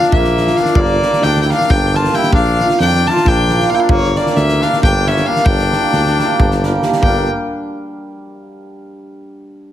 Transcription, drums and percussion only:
0.02 snare
0.12 kick
0.25 snare
0.37 snare
0.47 snare
0.57 snare
0.65 snare
0.75 kick
1.02 snare
1.13 snare
1.23 snare
1.36 snare
1.50 snare
1.61 snare
1.70 kick
1.95 snare
2.05 snare
2.13 snare
2.23 snare
2.33 kick
2.60 snare
2.70 snare
2.80 snare
2.93 snare
3.07 snare
3.16 snare
3.26 kick
3.49 snare
3.60 snare
3.89 kick
4.16 snare
4.26 snare
4.36 snare
4.49 snare
4.61 snare
4.73 snare
4.83 kick
5.07 snare
5.17 snare
5.36 snare
5.46 kick
5.59 snare
5.72 snare
5.93 snare
6.06 snare
6.19 snare
6.40 kick
6.51 snare
6.63 snare
6.83 snare
6.93 snare
7.03 kick

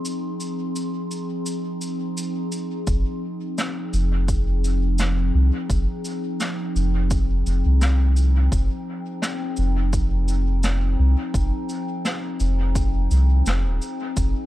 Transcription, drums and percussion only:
0.05 cabasa
0.40 cabasa
0.76 cabasa
1.11 cabasa
1.46 cabasa
1.81 cabasa
2.17 cabasa
2.52 cabasa
2.87 kick, cabasa
3.58 snare, cabasa
3.93 cabasa
4.28 kick, cabasa
4.64 cabasa
4.98 snare, cabasa
5.70 kick, cabasa
6.05 cabasa
6.40 snare, cabasa
6.76 cabasa
7.11 kick, cabasa
7.46 cabasa
7.81 snare, cabasa
8.17 cabasa
8.52 kick, cabasa
9.22 snare, cabasa
9.57 cabasa
9.93 kick, cabasa
10.28 cabasa
10.63 snare, cabasa
11.34 kick, cabasa
11.69 cabasa
12.05 snare, cabasa
12.40 cabasa
12.75 kick, cabasa
13.11 cabasa
13.46 snare, cabasa
13.82 cabasa
14.17 kick, cabasa

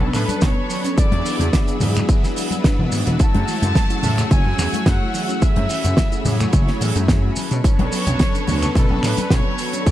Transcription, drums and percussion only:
0.00 muted conga
0.13 finger snap, snare, open hi-hat, shaker
0.28 closed hi-hat, high conga, shaker
0.41 kick, snare, closed hi-hat, shaker
0.70 open hi-hat, shaker
0.84 closed hi-hat, muted conga, shaker
0.98 kick, closed hi-hat, shaker
1.11 closed hi-hat, muted conga, high conga
1.26 open hi-hat, shaker
1.39 closed hi-hat, low conga, shaker
1.53 kick, snare, closed hi-hat, shaker
1.68 closed hi-hat, shaker
1.80 open hi-hat, high conga, low conga, shaker
1.95 finger snap, closed hi-hat, low conga, shaker
2.09 kick, closed hi-hat, shaker
2.24 snare, shaker
2.36 open hi-hat, shaker
2.51 closed hi-hat, high conga, shaker
2.64 kick, snare, closed hi-hat, shaker
2.92 open hi-hat, muted conga, shaker
3.06 closed hi-hat, shaker
3.19 kick, closed hi-hat, shaker
3.34 closed hi-hat, muted conga, high conga
3.48 open hi-hat, shaker
3.62 closed hi-hat, low conga, shaker
3.75 kick, snare, closed hi-hat, shaker
3.90 closed hi-hat, shaker
4.03 open hi-hat, high conga, low conga, shaker
4.18 finger snap, closed hi-hat, low conga, shaker
4.31 kick, closed hi-hat, shaker
4.45 muted conga
4.59 finger snap, snare, open hi-hat, shaker
4.73 closed hi-hat, high conga, shaker
4.86 kick, snare, closed hi-hat, shaker
5.14 open hi-hat, shaker
5.29 closed hi-hat, muted conga, shaker
5.42 kick, closed hi-hat, shaker
5.56 closed hi-hat, muted conga, high conga
5.69 open hi-hat, shaker
5.84 closed hi-hat, low conga, shaker
5.97 kick, snare, closed hi-hat, shaker
6.12 closed hi-hat, shaker
6.25 open hi-hat, high conga, low conga, shaker
6.40 finger snap, closed hi-hat, low conga, shaker
6.53 kick, closed hi-hat, shaker
6.67 snare
6.81 open hi-hat, shaker
6.96 closed hi-hat, high conga, shaker
7.08 kick, snare, closed hi-hat, shaker
7.36 open hi-hat, muted conga, shaker
7.51 closed hi-hat, shaker
7.64 kick, closed hi-hat, shaker
7.79 closed hi-hat, muted conga, high conga
7.92 open hi-hat, shaker
8.07 closed hi-hat, low conga, shaker
8.19 kick, snare, closed hi-hat, shaker
8.35 closed hi-hat, shaker
8.47 open hi-hat, high conga, low conga, shaker
8.62 finger snap, closed hi-hat, low conga, shaker
8.75 kick, closed hi-hat, shaker
8.89 muted conga
9.03 finger snap, snare, open hi-hat, shaker
9.17 closed hi-hat, high conga, shaker
9.30 kick, snare, closed hi-hat, shaker
9.58 open hi-hat, shaker
9.73 closed hi-hat, muted conga, shaker
9.86 kick, closed hi-hat, shaker

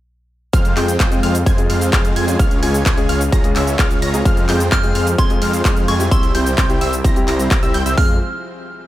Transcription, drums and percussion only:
0.53 kick, closed hi-hat, cabasa
0.65 closed hi-hat, cabasa
0.77 clap, open hi-hat
0.88 closed hi-hat, cabasa
1.00 kick, clap, closed hi-hat, cabasa
1.12 closed hi-hat, cabasa
1.23 open hi-hat
1.35 closed hi-hat, cabasa
1.46 kick, closed hi-hat, cabasa
1.58 closed hi-hat, cabasa
1.70 open hi-hat
1.81 closed hi-hat, cabasa
1.93 kick, clap, closed hi-hat, cabasa
2.05 closed hi-hat, cabasa
2.16 open hi-hat
2.28 closed hi-hat, cabasa
2.39 kick, closed hi-hat, cabasa
2.51 closed hi-hat, cabasa
2.63 open hi-hat
2.74 closed hi-hat, cabasa
2.86 kick, clap, closed hi-hat, cabasa
2.98 closed hi-hat, cabasa
3.09 open hi-hat
3.21 closed hi-hat, cabasa
3.32 kick, closed hi-hat, cabasa
3.44 closed hi-hat, cabasa
3.56 clap, open hi-hat
3.67 closed hi-hat, cabasa
3.79 kick, clap, closed hi-hat, cabasa
3.91 closed hi-hat, cabasa
4.02 open hi-hat
4.14 closed hi-hat, cabasa
4.25 kick, closed hi-hat, cabasa
4.37 closed hi-hat, cabasa
4.49 clap, open hi-hat
4.60 closed hi-hat, cabasa
4.72 kick, clap, closed hi-hat, cabasa
4.83 closed hi-hat, cabasa
4.95 open hi-hat
5.07 closed hi-hat, cabasa
5.18 kick, closed hi-hat, cabasa
5.30 closed hi-hat, cabasa
5.42 open hi-hat
5.53 closed hi-hat, cabasa
5.65 kick, clap, closed hi-hat, cabasa
5.77 closed hi-hat, cabasa
5.88 open hi-hat
6.00 closed hi-hat, cabasa
6.11 kick, closed hi-hat, cabasa
6.23 closed hi-hat, cabasa
6.35 open hi-hat
6.46 closed hi-hat, cabasa
6.58 kick, clap, closed hi-hat, cabasa
6.70 closed hi-hat, cabasa
6.81 open hi-hat
6.93 closed hi-hat, cabasa
7.04 kick, closed hi-hat, cabasa
7.16 closed hi-hat, cabasa
7.28 clap, open hi-hat
7.39 closed hi-hat, cabasa
7.51 kick, clap, closed hi-hat, cabasa
7.63 closed hi-hat, cabasa
7.74 open hi-hat
7.86 closed hi-hat, cabasa
7.98 kick, open hi-hat

